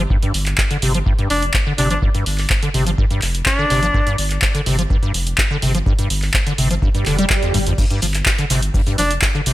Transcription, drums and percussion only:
0.10 kick
0.23 closed hi-hat
0.34 open hi-hat
0.46 clap, closed hi-hat
0.58 kick, clap
0.71 closed hi-hat
0.82 open hi-hat
0.94 closed hi-hat
1.06 kick
1.19 closed hi-hat
1.30 open hi-hat
1.42 closed hi-hat
1.54 kick, clap
1.78 open hi-hat
1.91 closed hi-hat
2.02 kick
2.15 closed hi-hat
2.26 open hi-hat
2.38 clap, open hi-hat
2.50 kick, clap
2.63 closed hi-hat
2.74 open hi-hat
2.87 closed hi-hat
2.98 kick
3.11 closed hi-hat
3.22 clap, open hi-hat
3.35 closed hi-hat
3.46 kick, clap
3.70 open hi-hat
3.83 closed hi-hat
3.94 kick
4.07 closed hi-hat
4.18 open hi-hat
4.30 clap, closed hi-hat
4.42 kick, clap
4.55 closed hi-hat
4.66 open hi-hat
4.79 closed hi-hat
4.90 kick
5.03 closed hi-hat
5.14 open hi-hat
5.27 closed hi-hat
5.38 kick, clap
5.62 open hi-hat
5.75 closed hi-hat
5.86 kick
5.99 closed hi-hat
6.10 open hi-hat
6.22 clap, open hi-hat
6.34 kick, clap
6.47 closed hi-hat
6.58 open hi-hat
6.71 closed hi-hat
6.82 kick
6.95 closed hi-hat
7.06 clap, open hi-hat
7.19 closed hi-hat
7.30 kick, clap
7.43 closed hi-hat
7.54 open hi-hat
7.67 closed hi-hat
7.78 kick, crash, tambourine, cabasa
7.91 closed hi-hat, cabasa
8.02 open hi-hat, tambourine, cabasa
8.14 clap, closed hi-hat, cabasa
8.26 kick, snare, clap, tambourine, cabasa
8.38 closed hi-hat, cabasa
8.50 snare, open hi-hat, tambourine, cabasa
8.62 closed hi-hat, cabasa
8.74 kick, open hi-hat, cabasa
8.87 closed hi-hat, cabasa
8.98 open hi-hat, tambourine, cabasa
9.11 closed hi-hat, cabasa
9.22 kick, snare, clap, tambourine, cabasa
9.35 cabasa
9.46 open hi-hat, tambourine, cabasa

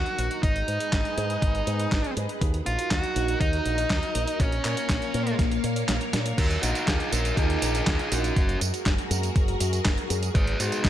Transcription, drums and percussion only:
0.06 closed hi-hat
0.19 closed hi-hat
0.31 closed hi-hat
0.43 kick, closed hi-hat
0.56 closed hi-hat
0.68 closed hi-hat
0.80 closed hi-hat
0.93 kick, snare, clap, closed hi-hat
1.05 closed hi-hat
1.18 closed hi-hat
1.30 closed hi-hat
1.42 kick, closed hi-hat
1.55 closed hi-hat
1.67 closed hi-hat
1.80 closed hi-hat
1.92 kick, snare, clap, closed hi-hat
2.04 closed hi-hat
2.17 closed hi-hat
2.29 closed hi-hat
2.41 kick, closed hi-hat
2.54 closed hi-hat
2.66 closed hi-hat
2.79 closed hi-hat
2.91 kick, snare, clap, closed hi-hat
3.04 closed hi-hat
3.16 closed hi-hat
3.28 closed hi-hat
3.41 kick, closed hi-hat
3.53 closed hi-hat
3.66 closed hi-hat
3.78 closed hi-hat
3.90 kick, snare, clap, closed hi-hat
4.03 closed hi-hat
4.15 closed hi-hat
4.27 closed hi-hat
4.40 kick, closed hi-hat
4.52 closed hi-hat
4.65 clap, closed hi-hat
4.77 closed hi-hat
4.89 kick, snare, clap, closed hi-hat
5.02 closed hi-hat
5.14 closed hi-hat
5.27 closed hi-hat
5.39 kick, snare, closed hi-hat
5.52 closed hi-hat
5.64 closed hi-hat
5.76 closed hi-hat
5.89 snare, clap, closed hi-hat
6.01 closed hi-hat
6.13 snare, closed hi-hat
6.26 closed hi-hat
6.38 kick, closed hi-hat, tambourine, crash
6.51 closed hi-hat
6.63 closed hi-hat, tambourine
6.75 closed hi-hat, tambourine
6.88 kick, snare, clap, closed hi-hat, tambourine
7.00 closed hi-hat
7.13 closed hi-hat, tambourine
7.25 closed hi-hat, tambourine
7.37 kick, closed hi-hat, tambourine
7.50 closed hi-hat
7.62 closed hi-hat, tambourine
7.75 closed hi-hat, tambourine
7.87 kick, snare, clap, closed hi-hat, tambourine
7.99 closed hi-hat
8.12 closed hi-hat, tambourine
8.24 closed hi-hat, tambourine
8.36 kick, closed hi-hat, tambourine
8.49 closed hi-hat
8.61 closed hi-hat, tambourine
8.74 closed hi-hat, tambourine
8.86 kick, snare, clap, closed hi-hat, tambourine
8.98 closed hi-hat
9.11 closed hi-hat, tambourine
9.23 closed hi-hat, tambourine
9.36 kick, closed hi-hat, tambourine
9.48 closed hi-hat
9.60 closed hi-hat, tambourine
9.73 closed hi-hat, tambourine
9.85 kick, snare, clap, closed hi-hat, tambourine
9.98 closed hi-hat
10.10 closed hi-hat, tambourine
10.23 closed hi-hat, tambourine
10.35 kick, closed hi-hat, tambourine
10.47 closed hi-hat
10.60 closed hi-hat, tambourine
10.72 closed hi-hat, tambourine
10.85 kick, snare, clap, closed hi-hat, tambourine

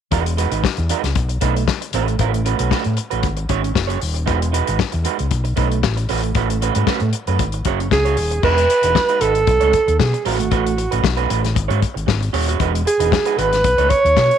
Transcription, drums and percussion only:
0.12 kick, closed hi-hat
0.26 closed hi-hat
0.38 closed hi-hat
0.52 closed hi-hat
0.64 kick, snare
0.77 closed hi-hat
0.89 closed hi-hat
1.04 snare, closed hi-hat
1.15 kick, closed hi-hat
1.29 closed hi-hat
1.41 kick, closed hi-hat
1.56 closed hi-hat
1.68 kick, snare
1.82 closed hi-hat
1.93 closed hi-hat
2.08 closed hi-hat
2.19 kick, closed hi-hat
2.34 closed hi-hat
2.46 closed hi-hat
2.59 closed hi-hat
2.71 kick, snare
2.84 closed hi-hat
2.97 closed hi-hat
3.11 closed hi-hat
3.23 kick, closed hi-hat
3.37 closed hi-hat
3.49 kick, closed hi-hat
3.64 closed hi-hat
3.75 kick, snare
3.90 closed hi-hat
4.01 open hi-hat
4.16 closed hi-hat
4.27 kick, closed hi-hat
4.42 closed hi-hat
4.54 closed hi-hat
4.67 closed hi-hat
4.79 kick, snare
4.92 closed hi-hat
5.05 closed hi-hat
5.19 closed hi-hat
5.31 kick, closed hi-hat
5.45 closed hi-hat
5.57 kick, closed hi-hat
5.72 closed hi-hat
5.83 kick, snare
5.97 closed hi-hat
6.09 open hi-hat
6.23 closed hi-hat
6.35 kick, closed hi-hat
6.50 closed hi-hat
6.62 closed hi-hat
6.75 closed hi-hat
6.87 kick, snare
7.00 closed hi-hat
7.13 closed hi-hat
7.27 closed hi-hat
7.39 kick, closed hi-hat
7.52 closed hi-hat
7.65 kick, closed hi-hat
7.80 closed hi-hat
7.91 kick, snare
8.06 closed hi-hat
8.17 open hi-hat
8.32 closed hi-hat
8.43 kick, crash
8.58 closed hi-hat
8.70 closed hi-hat
8.83 closed hi-hat
8.95 kick, snare
9.09 closed hi-hat
9.21 closed hi-hat
9.35 closed hi-hat
9.47 kick, closed hi-hat
9.61 closed hi-hat
9.73 kick, closed hi-hat
9.88 closed hi-hat
10.00 kick, snare
10.14 closed hi-hat
10.26 open hi-hat
10.40 closed hi-hat
10.52 kick, closed hi-hat
10.67 closed hi-hat
10.78 closed hi-hat
10.92 closed hi-hat
11.04 kick, snare
11.17 closed hi-hat
11.30 closed hi-hat
11.45 snare, closed hi-hat
11.56 kick, closed hi-hat
11.70 closed hi-hat
11.83 kick, closed hi-hat
11.97 closed hi-hat
12.08 kick, snare
12.23 closed hi-hat
12.34 open hi-hat
12.49 closed hi-hat
12.60 kick, closed hi-hat
12.75 closed hi-hat
12.87 closed hi-hat
13.00 closed hi-hat
13.12 kick, snare
13.26 closed hi-hat
13.39 closed hi-hat
13.53 snare, closed hi-hat
13.64 kick, closed hi-hat
13.78 closed hi-hat
13.90 kick, closed hi-hat
14.06 closed hi-hat
14.16 kick, snare
14.31 closed hi-hat

